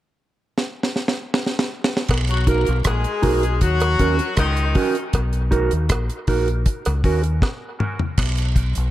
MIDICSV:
0, 0, Header, 1, 6, 480
1, 0, Start_track
1, 0, Tempo, 760456
1, 1323, Time_signature, 4, 2, 24, 8
1, 5622, End_track
2, 0, Start_track
2, 0, Title_t, "Clean electric guitar"
2, 0, Program_c, 0, 27
2, 1558, Note_on_c, 0, 63, 77
2, 1563, Note_on_c, 0, 66, 78
2, 1567, Note_on_c, 0, 70, 78
2, 1684, Note_off_c, 0, 63, 0
2, 1686, Note_off_c, 0, 66, 0
2, 1688, Note_off_c, 0, 70, 0
2, 2034, Note_on_c, 0, 63, 85
2, 2042, Note_on_c, 0, 66, 92
2, 2044, Note_on_c, 0, 70, 93
2, 2162, Note_off_c, 0, 63, 0
2, 2166, Note_off_c, 0, 66, 0
2, 2167, Note_off_c, 0, 70, 0
2, 2521, Note_on_c, 0, 61, 76
2, 2524, Note_on_c, 0, 66, 76
2, 2529, Note_on_c, 0, 70, 82
2, 2638, Note_off_c, 0, 70, 0
2, 2644, Note_off_c, 0, 66, 0
2, 2645, Note_off_c, 0, 61, 0
2, 2998, Note_on_c, 0, 61, 76
2, 3002, Note_on_c, 0, 66, 86
2, 3006, Note_on_c, 0, 70, 88
2, 3124, Note_off_c, 0, 61, 0
2, 3126, Note_off_c, 0, 66, 0
2, 3127, Note_off_c, 0, 70, 0
2, 3477, Note_on_c, 0, 63, 80
2, 3480, Note_on_c, 0, 66, 84
2, 3486, Note_on_c, 0, 70, 101
2, 3603, Note_off_c, 0, 63, 0
2, 3605, Note_off_c, 0, 66, 0
2, 3607, Note_off_c, 0, 70, 0
2, 3962, Note_on_c, 0, 63, 72
2, 3965, Note_on_c, 0, 66, 74
2, 3968, Note_on_c, 0, 70, 81
2, 4085, Note_off_c, 0, 63, 0
2, 4087, Note_off_c, 0, 66, 0
2, 4089, Note_off_c, 0, 70, 0
2, 4445, Note_on_c, 0, 61, 72
2, 4450, Note_on_c, 0, 66, 80
2, 4453, Note_on_c, 0, 70, 86
2, 4561, Note_off_c, 0, 70, 0
2, 4567, Note_off_c, 0, 61, 0
2, 4568, Note_off_c, 0, 66, 0
2, 4916, Note_on_c, 0, 61, 70
2, 4920, Note_on_c, 0, 66, 76
2, 4924, Note_on_c, 0, 70, 80
2, 5042, Note_off_c, 0, 61, 0
2, 5044, Note_off_c, 0, 66, 0
2, 5046, Note_off_c, 0, 70, 0
2, 5397, Note_on_c, 0, 63, 72
2, 5402, Note_on_c, 0, 66, 78
2, 5408, Note_on_c, 0, 70, 88
2, 5522, Note_off_c, 0, 63, 0
2, 5525, Note_off_c, 0, 66, 0
2, 5528, Note_off_c, 0, 70, 0
2, 5622, End_track
3, 0, Start_track
3, 0, Title_t, "Horn section"
3, 0, Program_c, 1, 61
3, 1446, Note_on_c, 1, 54, 74
3, 1447, Note_on_c, 1, 66, 78
3, 1540, Note_off_c, 1, 54, 0
3, 1540, Note_off_c, 1, 66, 0
3, 1563, Note_on_c, 1, 58, 79
3, 1563, Note_on_c, 1, 70, 84
3, 1755, Note_off_c, 1, 58, 0
3, 1755, Note_off_c, 1, 70, 0
3, 1803, Note_on_c, 1, 56, 93
3, 1804, Note_on_c, 1, 68, 94
3, 2258, Note_off_c, 1, 56, 0
3, 2258, Note_off_c, 1, 68, 0
3, 2284, Note_on_c, 1, 54, 102
3, 2284, Note_on_c, 1, 66, 116
3, 2738, Note_off_c, 1, 54, 0
3, 2738, Note_off_c, 1, 66, 0
3, 2764, Note_on_c, 1, 51, 96
3, 2765, Note_on_c, 1, 63, 104
3, 3104, Note_off_c, 1, 51, 0
3, 3104, Note_off_c, 1, 63, 0
3, 5622, End_track
4, 0, Start_track
4, 0, Title_t, "Fingered electric bass"
4, 0, Program_c, 2, 33
4, 1325, Note_on_c, 2, 35, 97
4, 1669, Note_off_c, 2, 35, 0
4, 1695, Note_on_c, 2, 35, 91
4, 1802, Note_off_c, 2, 35, 0
4, 1805, Note_on_c, 2, 34, 85
4, 1921, Note_off_c, 2, 34, 0
4, 2045, Note_on_c, 2, 35, 86
4, 2273, Note_off_c, 2, 35, 0
4, 2287, Note_on_c, 2, 39, 90
4, 2514, Note_off_c, 2, 39, 0
4, 2525, Note_on_c, 2, 39, 82
4, 2640, Note_off_c, 2, 39, 0
4, 2765, Note_on_c, 2, 37, 94
4, 2992, Note_off_c, 2, 37, 0
4, 3248, Note_on_c, 2, 35, 96
4, 3590, Note_off_c, 2, 35, 0
4, 3616, Note_on_c, 2, 39, 88
4, 3723, Note_off_c, 2, 39, 0
4, 3728, Note_on_c, 2, 34, 87
4, 3842, Note_off_c, 2, 34, 0
4, 3966, Note_on_c, 2, 34, 90
4, 4193, Note_off_c, 2, 34, 0
4, 4336, Note_on_c, 2, 37, 87
4, 4442, Note_off_c, 2, 37, 0
4, 4449, Note_on_c, 2, 39, 82
4, 4674, Note_off_c, 2, 39, 0
4, 5167, Note_on_c, 2, 35, 100
4, 5509, Note_off_c, 2, 35, 0
4, 5537, Note_on_c, 2, 35, 87
4, 5622, Note_off_c, 2, 35, 0
4, 5622, End_track
5, 0, Start_track
5, 0, Title_t, "Muted clean electric guitar strokes"
5, 2645, Note_on_c, 9, 29, 43
5, 2708, Note_off_c, 9, 29, 0
5, 4568, Note_on_c, 9, 29, 45
5, 4632, Note_off_c, 9, 29, 0
5, 5622, End_track
6, 0, Start_track
6, 0, Title_t, "Drums"
6, 364, Note_on_c, 9, 38, 56
6, 427, Note_off_c, 9, 38, 0
6, 526, Note_on_c, 9, 38, 57
6, 589, Note_off_c, 9, 38, 0
6, 605, Note_on_c, 9, 38, 57
6, 668, Note_off_c, 9, 38, 0
6, 683, Note_on_c, 9, 38, 68
6, 746, Note_off_c, 9, 38, 0
6, 845, Note_on_c, 9, 38, 89
6, 908, Note_off_c, 9, 38, 0
6, 925, Note_on_c, 9, 38, 73
6, 988, Note_off_c, 9, 38, 0
6, 1003, Note_on_c, 9, 38, 90
6, 1067, Note_off_c, 9, 38, 0
6, 1163, Note_on_c, 9, 38, 105
6, 1227, Note_off_c, 9, 38, 0
6, 1242, Note_on_c, 9, 38, 86
6, 1305, Note_off_c, 9, 38, 0
6, 1315, Note_on_c, 9, 49, 80
6, 1321, Note_on_c, 9, 36, 107
6, 1330, Note_on_c, 9, 56, 64
6, 1330, Note_on_c, 9, 58, 64
6, 1378, Note_off_c, 9, 49, 0
6, 1384, Note_off_c, 9, 36, 0
6, 1393, Note_off_c, 9, 56, 0
6, 1393, Note_off_c, 9, 58, 0
6, 1440, Note_on_c, 9, 42, 41
6, 1504, Note_off_c, 9, 42, 0
6, 1559, Note_on_c, 9, 42, 58
6, 1560, Note_on_c, 9, 36, 84
6, 1622, Note_off_c, 9, 42, 0
6, 1623, Note_off_c, 9, 36, 0
6, 1682, Note_on_c, 9, 42, 52
6, 1745, Note_off_c, 9, 42, 0
6, 1795, Note_on_c, 9, 42, 98
6, 1798, Note_on_c, 9, 37, 117
6, 1801, Note_on_c, 9, 36, 109
6, 1812, Note_on_c, 9, 56, 76
6, 1858, Note_off_c, 9, 42, 0
6, 1861, Note_off_c, 9, 37, 0
6, 1865, Note_off_c, 9, 36, 0
6, 1875, Note_off_c, 9, 56, 0
6, 1921, Note_on_c, 9, 42, 47
6, 1984, Note_off_c, 9, 42, 0
6, 2037, Note_on_c, 9, 46, 69
6, 2042, Note_on_c, 9, 36, 104
6, 2101, Note_off_c, 9, 46, 0
6, 2105, Note_off_c, 9, 36, 0
6, 2165, Note_on_c, 9, 42, 49
6, 2228, Note_off_c, 9, 42, 0
6, 2278, Note_on_c, 9, 42, 74
6, 2282, Note_on_c, 9, 36, 104
6, 2342, Note_off_c, 9, 42, 0
6, 2345, Note_off_c, 9, 36, 0
6, 2400, Note_on_c, 9, 42, 51
6, 2408, Note_on_c, 9, 56, 72
6, 2463, Note_off_c, 9, 42, 0
6, 2471, Note_off_c, 9, 56, 0
6, 2520, Note_on_c, 9, 42, 74
6, 2522, Note_on_c, 9, 36, 83
6, 2583, Note_off_c, 9, 42, 0
6, 2585, Note_off_c, 9, 36, 0
6, 2644, Note_on_c, 9, 42, 51
6, 2707, Note_off_c, 9, 42, 0
6, 2756, Note_on_c, 9, 42, 86
6, 2759, Note_on_c, 9, 37, 118
6, 2761, Note_on_c, 9, 36, 119
6, 2768, Note_on_c, 9, 56, 69
6, 2819, Note_off_c, 9, 42, 0
6, 2822, Note_off_c, 9, 37, 0
6, 2824, Note_off_c, 9, 36, 0
6, 2831, Note_off_c, 9, 56, 0
6, 2882, Note_on_c, 9, 42, 49
6, 2945, Note_off_c, 9, 42, 0
6, 2997, Note_on_c, 9, 46, 75
6, 3001, Note_on_c, 9, 36, 92
6, 3060, Note_off_c, 9, 46, 0
6, 3064, Note_off_c, 9, 36, 0
6, 3124, Note_on_c, 9, 42, 54
6, 3187, Note_off_c, 9, 42, 0
6, 3239, Note_on_c, 9, 42, 79
6, 3243, Note_on_c, 9, 36, 106
6, 3249, Note_on_c, 9, 56, 63
6, 3302, Note_off_c, 9, 42, 0
6, 3306, Note_off_c, 9, 36, 0
6, 3312, Note_off_c, 9, 56, 0
6, 3362, Note_on_c, 9, 42, 41
6, 3425, Note_off_c, 9, 42, 0
6, 3482, Note_on_c, 9, 36, 83
6, 3484, Note_on_c, 9, 42, 61
6, 3546, Note_off_c, 9, 36, 0
6, 3547, Note_off_c, 9, 42, 0
6, 3604, Note_on_c, 9, 42, 57
6, 3667, Note_off_c, 9, 42, 0
6, 3719, Note_on_c, 9, 42, 101
6, 3722, Note_on_c, 9, 37, 109
6, 3724, Note_on_c, 9, 36, 109
6, 3735, Note_on_c, 9, 56, 78
6, 3782, Note_off_c, 9, 42, 0
6, 3785, Note_off_c, 9, 37, 0
6, 3787, Note_off_c, 9, 36, 0
6, 3798, Note_off_c, 9, 56, 0
6, 3847, Note_on_c, 9, 42, 46
6, 3910, Note_off_c, 9, 42, 0
6, 3959, Note_on_c, 9, 46, 69
6, 3963, Note_on_c, 9, 36, 102
6, 4022, Note_off_c, 9, 46, 0
6, 4026, Note_off_c, 9, 36, 0
6, 4089, Note_on_c, 9, 42, 46
6, 4152, Note_off_c, 9, 42, 0
6, 4202, Note_on_c, 9, 42, 83
6, 4204, Note_on_c, 9, 36, 97
6, 4265, Note_off_c, 9, 42, 0
6, 4267, Note_off_c, 9, 36, 0
6, 4325, Note_on_c, 9, 42, 54
6, 4331, Note_on_c, 9, 56, 66
6, 4388, Note_off_c, 9, 42, 0
6, 4394, Note_off_c, 9, 56, 0
6, 4443, Note_on_c, 9, 46, 51
6, 4444, Note_on_c, 9, 36, 88
6, 4506, Note_off_c, 9, 46, 0
6, 4507, Note_off_c, 9, 36, 0
6, 4567, Note_on_c, 9, 42, 49
6, 4630, Note_off_c, 9, 42, 0
6, 4684, Note_on_c, 9, 36, 121
6, 4684, Note_on_c, 9, 38, 56
6, 4690, Note_on_c, 9, 56, 72
6, 4747, Note_off_c, 9, 36, 0
6, 4747, Note_off_c, 9, 38, 0
6, 4753, Note_off_c, 9, 56, 0
6, 4924, Note_on_c, 9, 45, 85
6, 4987, Note_off_c, 9, 45, 0
6, 5046, Note_on_c, 9, 43, 87
6, 5109, Note_off_c, 9, 43, 0
6, 5160, Note_on_c, 9, 49, 94
6, 5163, Note_on_c, 9, 36, 112
6, 5169, Note_on_c, 9, 56, 68
6, 5169, Note_on_c, 9, 58, 66
6, 5223, Note_off_c, 9, 49, 0
6, 5226, Note_off_c, 9, 36, 0
6, 5232, Note_off_c, 9, 56, 0
6, 5232, Note_off_c, 9, 58, 0
6, 5283, Note_on_c, 9, 42, 41
6, 5346, Note_off_c, 9, 42, 0
6, 5402, Note_on_c, 9, 36, 87
6, 5403, Note_on_c, 9, 42, 58
6, 5465, Note_off_c, 9, 36, 0
6, 5467, Note_off_c, 9, 42, 0
6, 5524, Note_on_c, 9, 42, 58
6, 5587, Note_off_c, 9, 42, 0
6, 5622, End_track
0, 0, End_of_file